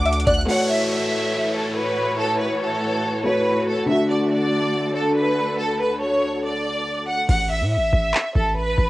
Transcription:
Already playing: 808-style bass D2, grand piano D3 A3 F#4, string section D3 D4 A4 F#5, violin section D6
0.06 synth pluck E5, closed hi-hat
0.13 closed hi-hat
0.20 closed hi-hat
0.27 808-style bass D2, synth pluck D5, violin section F#6, kick, closed hi-hat
0.34 closed hi-hat
0.41 closed hi-hat
0.46 string section A2 E3 F#4 C#5, grand piano A3 F#4, violin section F#5, downlifter
0.51 grand piano C#5
0.69 violin section E5
0.91 violin section E5
1.54 violin section A4
1.76 violin section B4
2.18 violin section A4
2.40 violin section B4
2.61 violin section A4
3.24 grand piano A3 F#4 C#5, violin section B4
3.67 violin section A4
3.86 string section D2 D3 A4, grand piano D3 A3, violin section E5
3.91 grand piano F#4
4.10 violin section D5
4.31 violin section D5
4.95 violin section A4
5.16 violin section B4
5.59 violin section A4
5.80 violin section B4
6.01 violin section C#5
6.44 violin section D5
7.08 violin section F#5
7.29 808-style bass A1, violin section F#5, kick, crash
7.50 violin section E5
7.61 808-style bass A2
7.71 violin section E5
7.77 808-style bass A1
7.93 808-style bass A1, kick
8.14 clap
8.35 808-style bass A1, violin section A4, kick
8.57 violin section B4
8.78 808-style bass A1, kick

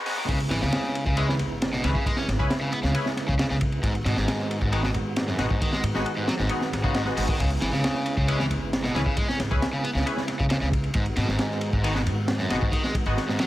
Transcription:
Already playing: tonewheel organ F#3 B3 D#4 G#4
0.06 overdriven electric guitar G#2, synth stab G#3 B3 D#4 F#4, snare, open hi-hat
0.17 overdriven electric guitar D#3, snare
0.28 upright bass C#2, overdriven electric guitar C#3, tonewheel organ C#3 G#3 B3 E4, kick, ride
0.40 ride
0.50 upright bass G#1, overdriven electric guitar E3, snare, ride
0.62 upright bass C#2, overdriven electric guitar C#3, snare
0.72 snare, ride
0.84 snare
0.95 ride
1.06 upright bass C#2, overdriven electric guitar C#3, kick
1.17 overdriven electric guitar G#3, synth stab C#4 E4 G#4 B4, ride
1.29 overdriven electric guitar E3, snare
1.39 upright bass G#1, ride
1.62 snare, ride
1.73 overdriven electric guitar B2, snare
1.84 upright bass C#2, overdriven electric guitar E3, synth stab C#4 E4 G#4 B4, snare, ride
1.95 overdriven electric guitar C#3, kick
2.06 overdriven electric guitar G#3, kick, ride
2.17 overdriven electric guitar C#4, snare
2.28 upright bass G#1, snare, ride
2.39 upright bass C#2, synth stab C#4 E4 G#4 B4, kick
2.50 snare, ride
2.61 overdriven electric guitar C#3
2.72 overdriven electric guitar B3, ride
2.83 upright bass C#2, overdriven electric guitar C#3, snare
2.95 synth stab C#4 E4 G#4 B4, ride
3.06 snare
3.17 snare, ride
3.28 upright bass C#2, overdriven electric guitar C#3, kick
3.39 overdriven electric guitar C#3, snare, ride
3.50 upright bass C#2, overdriven electric guitar C#3, snare
3.61 kick, ride
3.72 ride
3.83 upright bass G#1, overdriven electric guitar G#2, tonewheel organ D#3 F#4, kick, ride
3.95 ride
4.05 upright bass G#2, overdriven electric guitar B2, snare, ride
4.17 upright bass G#1, overdriven electric guitar G#2, snare
4.28 snare, ride
4.39 snare
4.51 ride
4.61 upright bass G#1, overdriven electric guitar G#2, kick
4.72 overdriven electric guitar D#3, synth stab G#3 B3 D#4 F#4, ride
4.83 overdriven electric guitar B2, snare
4.94 upright bass G#2, ride
5.16 snare, ride
5.28 overdriven electric guitar F#2, snare
5.39 upright bass G#1, overdriven electric guitar B2, synth stab G#3 B3 D#4 F#4, snare, ride
5.50 overdriven electric guitar G#2, kick
5.61 overdriven electric guitar D#3, kick, ride
5.72 overdriven electric guitar G#3, snare
5.83 upright bass G#2, ride
5.95 upright bass G#1, synth stab G#3 B3 D#4 F#4, snare
6.06 ride
6.17 overdriven electric guitar G#2
6.27 overdriven electric guitar F#3, snare, ride
6.39 upright bass G#1, overdriven electric guitar G#2, snare
6.49 synth stab G#3 B3 D#4 F#4, ride
6.61 snare
6.72 upright bass G#1, snare, ride
6.84 overdriven electric guitar C#3, synth stab G#3 B3 D#4 F#4, kick
6.94 overdriven electric guitar G#2, snare, ride
7.05 synth stab G#3 B3 D#4 F#4, snare
7.17 upright bass G#1, overdriven electric guitar G#2, synth stab G#3 B3 D#4 F#4, open hi-hat
7.28 overdriven electric guitar D#3, kick
7.39 upright bass C#2, overdriven electric guitar C#3, tonewheel organ C#3 E4, kick, ride
7.50 ride
7.61 upright bass G#1, overdriven electric guitar E3, snare, ride
7.73 upright bass C#2, overdriven electric guitar C#3, snare
7.84 snare, ride
7.94 snare
8.06 ride
8.17 upright bass C#2, overdriven electric guitar C#3, kick
8.28 overdriven electric guitar G#3, synth stab C#4 E4 G#4 B4, ride
8.40 overdriven electric guitar E3, snare
8.50 upright bass G#1, ride
8.73 snare, ride
8.84 overdriven electric guitar B2, snare
8.94 upright bass C#2, overdriven electric guitar E3, synth stab C#4 E4 G#4 B4, snare, ride
9.06 overdriven electric guitar C#3, kick
9.17 overdriven electric guitar G#3, kick, ride
9.28 overdriven electric guitar C#4, snare
9.39 upright bass G#1, snare, ride
9.51 upright bass C#2, synth stab C#4 E4 G#4 B4, kick
9.62 snare, ride
9.73 overdriven electric guitar C#3
9.84 overdriven electric guitar B3, ride
9.95 upright bass C#2, overdriven electric guitar C#3, snare
10.06 synth stab C#4 E4 G#4 B4, ride
10.17 snare
10.28 snare, ride
10.39 upright bass C#2, overdriven electric guitar C#3, kick
10.50 overdriven electric guitar C#3, snare, ride
10.61 upright bass C#2, overdriven electric guitar C#3, snare
10.72 kick, ride
10.84 ride
10.94 upright bass G#1, overdriven electric guitar G#2, tonewheel organ D#3 G#3 B3 F#4, kick, ride
11.06 ride
11.16 upright bass G#2, overdriven electric guitar B2, snare, ride
11.28 upright bass G#1, overdriven electric guitar G#2, snare
11.39 snare, ride
11.51 snare
11.61 ride
11.73 upright bass G#1, overdriven electric guitar G#2, kick
11.83 overdriven electric guitar D#3, synth stab G#3 B3 D#4 F#4, ride
11.95 overdriven electric guitar B2, snare
12.06 upright bass G#2, ride
12.28 snare, ride
12.39 overdriven electric guitar F#2, snare
12.50 upright bass G#1, overdriven electric guitar B2, synth stab G#3 B3 D#4 F#4, snare, ride
12.61 overdriven electric guitar G#2, kick
12.72 overdriven electric guitar D#3, kick, ride
12.83 overdriven electric guitar G#3, snare
12.95 upright bass G#2, kick, ride
13.06 upright bass G#1, synth stab G#3 B3 D#4 F#4, ride
13.17 snare, ride
13.28 overdriven electric guitar G#2, snare
13.39 overdriven electric guitar F#3, snare, ride

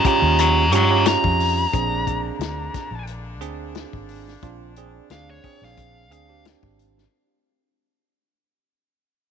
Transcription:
Already playing: horn section C#3 G3 C#4 D#4
0.05 tine electric piano C#4 F4 G4, lead electric guitar G5 A#5, kick, closed hi-hat
0.22 fingered electric bass D#2
0.39 lead electric guitar A#5 C#6, closed hi-hat
0.72 fingered electric bass G2, tine electric piano C#4 F4 G4, lead electric guitar A#5 C#6, closed hi-hat
0.90 tine electric piano C#4 F4 G4
1.06 lead electric guitar A#5, snare, closed hi-hat
1.24 fingered electric bass F2, kick
1.40 open hi-hat
1.73 fingered electric bass A#1, horn section D3 G#3 A#3 D4, tine electric piano C4 D4 G#4, kick, closed hi-hat
2.07 kick, closed hi-hat
2.39 fingered electric bass D2, snare, closed hi-hat
2.74 kick, snare, closed hi-hat
2.91 fingered electric bass A#1
3.07 closed hi-hat
3.40 fingered electric bass D2, tine electric piano C4 D4 G#4, closed hi-hat
3.75 snare, closed hi-hat
3.93 fingered electric bass G#1, kick
4.09 open hi-hat
4.28 snare
4.42 fingered electric bass A#1, tine electric piano C4 D4 F4, kick, closed hi-hat
4.76 tine electric piano C4 D4 G#4, closed hi-hat
5.10 fingered electric bass D2, tine electric piano C4 D4 G#4, lead electric guitar F5, snare, closed hi-hat
5.30 lead electric guitar C#5
5.44 tine electric piano C4 D4 G#4, kick, open hi-hat
5.62 fingered electric bass A#1, lead electric guitar F5, snare
5.77 kick, closed hi-hat
6.10 fingered electric bass D2, tine electric piano C4 D4 G#4, lead electric guitar F5, closed hi-hat
6.29 tine electric piano C4 D4 G4
6.45 snare, closed hi-hat
6.63 fingered electric bass G#1, kick
6.79 closed hi-hat
6.98 snare

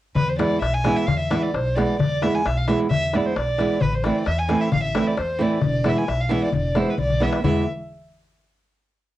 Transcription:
0.16 upright bass E2, violin B4, darbuka dum
0.28 violin C5, darbuka tek
0.39 nylon-string guitar E3 G#3 B3 E4, violin D5, darbuka tek
0.51 darbuka tek
0.61 upright bass B1, violin E5, darbuka tek
0.74 violin G#5
0.84 nylon-string guitar E3 G#3 B3 E4, darbuka tek
0.96 violin E5
1.07 upright bass E2, violin F5, darbuka dum
1.19 violin E5
1.30 nylon-string guitar E3 G#3 B3 E4, darbuka tek
1.42 violin D5, darbuka tek
1.54 upright bass B1, violin C5, darbuka tek
1.75 nylon-string guitar E3 G#3 B3 E4, violin D5, darbuka tek
1.90 darbuka tek
1.99 upright bass E2, violin D5, darbuka dum
2.22 nylon-string guitar E3 G#3 B3 E4, violin E5, darbuka tek
2.34 violin G#5, darbuka tek
2.45 upright bass B1, violin E5, darbuka tek
2.57 violin F5
2.68 nylon-string guitar E3 G#3 B3 E4, violin E5, darbuka tek
2.79 darbuka tek
2.90 upright bass E2, violin E5, darbuka dum
3.03 darbuka tek
3.13 nylon-string guitar E3 G#3 B3 E4, violin D5, darbuka tek
3.26 violin C5
3.36 upright bass B1, violin D5, darbuka tek
3.47 darbuka tek
3.58 nylon-string guitar E3 G#3 B3 E4, darbuka tek
3.81 upright bass A1, violin B4, darbuka dum
3.93 violin C5, darbuka tek
4.04 nylon-string guitar E3 A3 C4 E4, violin D5, darbuka tek
4.26 upright bass E2, violin E5, darbuka tek
4.39 violin G#5
4.48 nylon-string guitar E3 A3 C4 E4, darbuka tek
4.61 violin E5
4.72 upright bass A1, violin F5, darbuka dum
4.83 violin E5, darbuka tek
4.95 nylon-string guitar E3 A3 C4 E4, darbuka tek
5.07 violin D5, darbuka tek
5.17 upright bass E2, violin C5, darbuka tek
5.39 nylon-string guitar E3 A3 C4 E4, violin D5
5.51 darbuka tek
5.61 upright bass E1, darbuka dum
5.66 violin D5
5.73 darbuka tek
5.84 nylon-string guitar E3 G#3 B3 E4, darbuka tek
5.88 violin E5
5.97 violin G#5, darbuka tek
6.08 upright bass B1, violin E5, darbuka tek
6.21 violin F5
6.29 nylon-string guitar E3 G#3 B3 E4, violin E5, darbuka tek
6.44 violin D5
6.52 upright bass E1, violin D5, darbuka dum
6.64 darbuka tek
6.75 nylon-string guitar E3 G#3 B3 E4, violin C5, darbuka tek
6.90 violin B4
6.98 upright bass B1, violin D5, darbuka dum
7.10 darbuka dum
7.20 nylon-string guitar E3 G#3 B3 E4, violin E5, darbuka tek
7.33 darbuka tek
7.44 upright bass E2, nylon-string guitar E3 G#3 B3 E4, violin E5, darbuka dum

